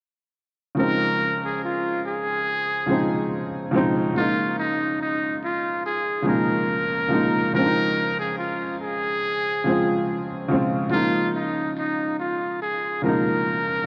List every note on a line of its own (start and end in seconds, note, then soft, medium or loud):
0.75 1.92 C#3 medium
0.75 1.92 F3 medium
0.75 1.93 G#3 medium
0.75 1.40 A#4 loud
0.80 1.94 C4 medium
0.80 1.95 D#4 medium
1.45 1.61 G#4 medium
1.65 2.01 F4 medium
2.07 3.28 G#4 medium
2.86 3.46 C#3 medium
2.86 3.47 F3 medium
2.86 3.47 G#3 medium
2.91 3.48 C4 medium
2.91 3.49 D#4 medium
3.71 4.02 C#3 medium
3.71 4.03 F3 medium
3.71 4.04 G#3 medium
3.76 4.04 C4 medium
3.76 4.05 D#4 loud
4.13 5.30 C#3 medium
4.13 5.31 F3 medium
4.13 5.32 G#3 medium
4.13 4.54 F4 medium
4.18 5.32 A#3 medium
4.18 5.33 D#4 medium
4.59 4.97 D#4 medium
5.02 5.39 D#4 medium
5.44 5.81 F4 medium
5.86 6.23 G#4 medium
6.22 6.83 C#3 medium
6.22 6.84 F3 medium
6.22 6.85 G#3 medium
6.27 6.86 A#3 medium
6.27 6.86 D#4 medium
6.27 7.50 A#4 medium
7.08 7.40 C#3 medium
7.08 7.40 F3 medium
7.08 7.41 G#3 medium
7.13 7.42 A#3 medium
7.13 7.43 D#4 medium
7.53 8.69 C#3 medium
7.53 8.70 F3 medium
7.53 8.70 G#3 medium
7.53 8.21 A#4 loud
7.58 8.71 C4 medium
7.58 7.63 D4 medium
7.66 8.75 D#4 medium
8.20 8.36 G#4 medium
8.38 8.76 F4 medium
8.82 10.03 G#4 loud
9.64 10.23 C#3 medium
9.64 10.24 F3 medium
9.64 10.24 G#3 medium
9.69 10.25 C4 medium
9.69 10.26 F4 medium
10.48 10.79 C#3 medium
10.48 10.79 F3 medium
10.48 10.80 G#3 medium
10.53 10.81 C4 medium
10.53 10.82 F4 medium
10.89 12.06 C#3 medium
10.89 12.07 F3 medium
10.89 12.07 G#3 medium
10.89 11.30 F4 loud
10.94 12.08 A#3 medium
10.94 12.09 D#4 medium
11.35 11.73 D#4 medium
11.78 12.15 D#4 medium
12.20 12.57 F4 medium
12.62 12.99 G#4 medium
13.02 13.61 C#3 medium
13.02 13.62 F3 medium
13.02 13.63 G#3 medium
13.02 13.86 A#4 medium
13.07 13.63 A#3 soft
13.07 13.64 D#4 medium